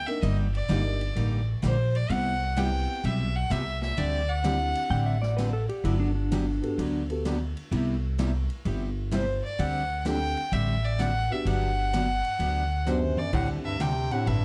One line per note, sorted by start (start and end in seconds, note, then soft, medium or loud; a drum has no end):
0.07 0.21 A#3 medium
0.07 0.22 D4 medium
0.07 0.22 D#4 medium
0.07 0.22 A#4 medium
0.07 0.21 E5 medium
0.07 ride soft
0.22 0.60 G1 medium
0.22 0.46 D3 medium
0.22 0.46 G3 medium
0.22 0.46 A#3 medium
0.22 0.46 D#4 medium
0.22 0.46 G4 medium
0.22 0.36 D#5 medium
0.22 ride medium
0.54 1.44 D5 medium
0.54 ride soft
0.68 1.09 G1 medium
0.68 0.81 D3 medium
0.68 0.82 G3 medium
0.68 0.98 A#3 medium
0.68 0.82 A#3 medium
0.68 0.98 D4 medium
0.68 0.82 D#4 medium
0.68 0.98 D#4 medium
0.68 0.82 G4 medium
0.68 0.98 G4 medium
0.68 snare medium
0.68 hi-hat pedal medium
0.68 ride medium
1.01 ride soft
1.15 1.56 A1 medium
1.15 1.39 D3 medium
1.15 1.39 G3 medium
1.15 1.39 A#3 medium
1.15 1.40 D#4 medium
1.15 1.40 G4 medium
1.15 ride medium
1.62 2.03 A#1 medium
1.62 1.75 D3 medium
1.62 1.75 G3 medium
1.62 1.75 A#3 medium
1.62 1.75 D#4 medium
1.62 1.76 G4 medium
1.62 1.97 C5 medium
1.62 snare medium
1.62 hi-hat pedal medium
1.62 ride medium
1.95 2.13 D5 medium
1.95 ride soft
2.09 2.85 C2 loud
2.09 2.33 C3 medium
2.09 2.33 G3 medium
2.09 2.33 B3 medium
2.09 2.33 E4 medium
2.09 2.33 G4 medium
2.09 2.59 F#5 loud
2.09 ride medium
2.56 2.69 C3 medium
2.56 2.69 G3 medium
2.56 2.69 B3 medium
2.56 3.29 B3 medium
2.56 3.29 C4 medium
2.56 2.69 E4 medium
2.56 3.29 E4 medium
2.56 2.70 G4 medium
2.56 3.29 G4 medium
2.56 3.07 G5 loud
2.56 snare medium
2.56 hi-hat pedal medium
2.56 ride medium
3.04 3.44 B1 medium
3.04 3.27 C3 medium
3.04 3.27 G3 soft
3.04 3.27 B3 medium
3.04 3.27 E4 medium
3.04 3.27 G4 medium
3.04 3.37 E5 medium
3.04 ride medium
3.36 3.53 F#5 loud
3.50 3.90 C2 medium
3.50 3.62 C3 medium
3.50 3.63 G3 medium
3.50 3.63 B3 medium
3.50 3.63 E4 medium
3.50 3.63 G4 medium
3.50 3.82 E5 loud
3.50 snare medium
3.50 hi-hat pedal medium
3.50 ride medium
3.82 3.99 E5 medium
3.82 snare medium
3.97 4.73 D2 medium
3.97 4.20 D3 medium
3.97 4.20 G3 medium
3.97 4.20 C4 medium
3.97 4.21 D4 medium
3.97 4.21 G4 medium
3.97 4.30 D5 loud
3.97 ride medium
4.29 5.22 F#5 loud
4.43 4.56 D3 medium
4.43 4.56 G3 medium
4.43 5.16 C4 medium
4.43 4.57 C4 medium
4.43 5.16 D4 medium
4.43 4.57 D4 medium
4.43 5.16 E4 medium
4.43 5.16 G4 medium
4.43 4.57 G4 medium
4.43 snare medium
4.43 hi-hat pedal soft
4.43 ride medium
4.75 ride medium
4.90 5.65 A1 medium
4.90 5.14 D3 medium
4.90 5.14 G3 soft
4.90 5.14 C4 medium
4.90 5.14 D4 medium
4.90 5.14 G4 medium
4.90 5.06 G5 loud
5.06 5.21 E5 medium
5.22 5.37 D5 medium
5.22 snare soft
5.37 5.50 D3 medium
5.37 5.50 G3 medium
5.37 5.51 C4 medium
5.37 5.51 D4 medium
5.37 5.51 G4 medium
5.37 5.52 B4 medium
5.37 snare medium
5.37 hi-hat pedal medium
5.37 ride medium
5.53 5.68 A4 medium
5.69 5.84 G4 medium
5.69 ride soft
5.84 6.59 G1 medium
5.84 6.08 D3 medium
5.84 6.08 F#3 medium
5.84 6.08 B3 medium
5.84 6.08 D4 medium
5.84 5.99 E4 medium
5.84 6.08 G4 medium
5.84 ride medium
6.00 6.14 D4 medium
6.15 7.06 D4 medium
6.32 6.44 D3 medium
6.32 6.44 F#3 medium
6.32 6.44 B3 medium
6.32 6.44 D4 medium
6.32 6.44 G4 medium
6.32 snare medium
6.32 hi-hat pedal medium
6.32 ride medium
6.62 6.76 B3 medium
6.62 6.76 F#4 medium
6.62 6.77 G4 medium
6.62 6.77 A4 medium
6.62 ride soft
6.78 7.53 D2 medium
6.78 7.01 D3 soft
6.78 7.02 F#3 medium
6.78 7.02 B3 medium
6.78 7.02 D4 medium
6.78 7.02 G4 medium
6.78 ride medium
7.09 7.23 B3 medium
7.09 7.24 F#4 medium
7.09 7.24 G4 medium
7.09 7.24 A4 medium
7.09 ride soft
7.25 7.37 D3 medium
7.25 7.38 F#3 medium
7.25 7.38 B3 medium
7.25 7.38 D4 medium
7.25 7.38 G4 medium
7.25 snare medium
7.25 hi-hat pedal medium
7.25 ride medium
7.57 ride soft
7.72 8.47 C2 medium
7.72 7.95 C3 medium
7.72 7.95 G3 medium
7.72 7.95 B3 medium
7.72 7.95 E4 medium
7.72 7.95 G4 medium
7.72 ride medium
8.18 8.31 C3 medium
8.18 8.31 G3 medium
8.18 8.31 B3 medium
8.18 8.31 E4 medium
8.18 8.31 G4 medium
8.18 snare medium
8.18 hi-hat pedal medium
8.18 ride medium
8.50 ride soft
8.65 9.40 G1 medium
8.65 8.88 C3 medium
8.65 8.88 G3 medium
8.65 8.89 B3 medium
8.65 8.89 E4 medium
8.65 8.89 G4 medium
8.65 ride medium
9.12 9.24 C3 medium
9.12 9.24 G3 medium
9.12 9.24 B3 medium
9.12 9.24 E4 medium
9.12 9.25 G4 medium
9.12 9.42 C5 medium
9.12 snare medium
9.12 hi-hat pedal medium
9.12 ride medium
9.44 9.61 D5 medium
9.59 10.34 D2 loud
9.59 9.82 D3 medium
9.59 9.82 G3 medium
9.59 9.82 C4 medium
9.59 9.82 D4 medium
9.59 9.82 G4 medium
9.59 10.01 F#5 medium
9.59 ride medium
10.01 10.18 D3 medium
10.01 10.18 G3 medium
10.01 10.08 F#5 medium
10.05 10.34 C4 medium
10.05 10.18 C4 medium
10.05 10.18 D4 medium
10.05 10.34 D4 medium
10.05 10.18 G4 medium
10.05 10.34 G4 medium
10.05 10.35 A4 medium
10.05 10.54 G5 loud
10.05 snare medium
10.05 hi-hat pedal medium
10.05 ride medium
10.37 ride soft
10.52 11.27 A1 medium
10.52 10.75 D3 soft
10.52 10.75 G3 medium
10.52 10.75 C4 medium
10.52 10.75 D4 medium
10.52 10.76 G4 medium
10.52 10.86 E5 medium
10.52 ride medium
10.84 11.01 D5 medium
10.99 11.11 D3 medium
10.99 11.11 G3 medium
10.99 11.11 C4 medium
10.99 11.12 D4 medium
10.99 11.12 G4 medium
10.99 11.34 F#5 loud
10.99 snare medium
10.99 hi-hat pedal medium
10.99 ride medium
11.30 11.90 B3 medium
11.30 11.90 D4 medium
11.30 11.90 F#4 medium
11.30 11.91 G4 medium
11.30 11.49 E5 medium
11.45 12.20 G1 medium
11.45 11.69 D3 medium
11.45 11.69 F#3 medium
11.45 11.69 B3 medium
11.45 11.70 D4 medium
11.45 11.70 G4 medium
11.45 12.88 F#5 loud
11.45 ride medium
11.93 12.05 D3 medium
11.93 12.05 F#3 medium
11.93 12.05 B3 medium
11.93 12.05 D4 medium
11.93 12.06 G4 medium
11.93 snare medium
11.93 hi-hat pedal medium
11.93 ride medium
12.24 ride soft
12.39 13.14 D2 medium
12.39 12.62 D3 soft
12.39 12.63 F#3 medium
12.39 12.63 B3 medium
12.39 12.63 D4 medium
12.39 12.63 G4 medium
12.39 ride medium
12.85 13.17 F#2 medium
12.85 12.99 D3 medium
12.85 12.99 F#3 medium
12.85 13.14 B3 medium
12.85 12.99 B3 medium
12.85 13.14 D4 medium
12.85 12.99 D4 medium
12.85 13.15 F#4 medium
12.85 13.15 G4 medium
12.85 12.99 G4 medium
12.85 13.20 C5 medium
12.85 hi-hat pedal medium
12.85 mid tom soft
13.02 mid tom soft
13.17 13.33 F#2 medium
13.17 13.34 D5 medium
13.17 mid tom medium
13.32 14.08 D2 medium
13.32 13.47 A2 medium
13.32 13.56 D3 medium
13.32 13.56 G3 medium
13.32 14.05 C4 medium
13.32 13.56 C4 medium
13.32 14.05 D4 medium
13.32 13.57 D4 medium
13.32 14.05 E4 medium
13.32 14.06 G4 medium
13.32 13.57 G4 medium
13.32 13.48 F#5 medium
13.32 kick medium
13.32 crash medium
13.64 13.81 G2 medium
13.64 13.82 E5 medium
13.79 14.13 C3 medium
13.79 13.92 D3 medium
13.79 13.92 G3 medium
13.79 13.93 C4 medium
13.79 13.93 D4 medium
13.79 13.93 G4 medium
13.79 14.13 G5 loud
13.79 snare medium
13.79 hi-hat pedal medium
13.79 ride medium
14.11 14.29 A2 medium
14.11 14.25 C4 medium
14.11 14.25 D4 medium
14.11 14.26 E4 medium
14.11 14.26 G4 medium
14.11 14.29 F#5 loud
14.11 ride soft
14.26 14.45 A1 medium
14.26 14.45 G2 medium
14.26 14.45 D3 soft
14.26 14.45 G3 medium
14.26 14.45 C4 soft
14.26 14.45 D4 medium
14.26 14.45 G4 medium
14.26 14.45 E5 loud
14.26 ride medium